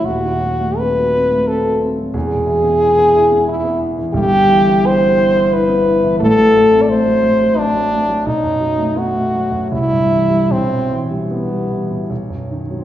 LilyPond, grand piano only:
\new Staff \with { instrumentName = "Grand piano" } { \clef bass \time 3/4 \key e \major \tempo 4 = 86 <dis,, dis,>16 dis16 fis16 a16 bis16 fis'16 bis16 a16 bis16 fis'16 bis16 fis16 | <e,, e,>16 b,16 e16 b16 e'16 b16 e'16 b16 e'16 b16 e'16 e16 | \key e \minor <g,, g,>16 g16 e16 b16 e'16 b16 e'16 b16 e'16 b16 e'16 e16 | <a,, a,>16 fis16 a16 c'16 a16 fis16 a16 fis16 a16 fis16 a16 fis16 |
b,,16 fis,16 fis16 a16 b16 a16 fis16 fis,16 c,16 g,16 e16 g16 | b,,16 b,16 e16 g16 b16 g16 e16 b,16 b,,16 fis,16 dis16 fis16 | }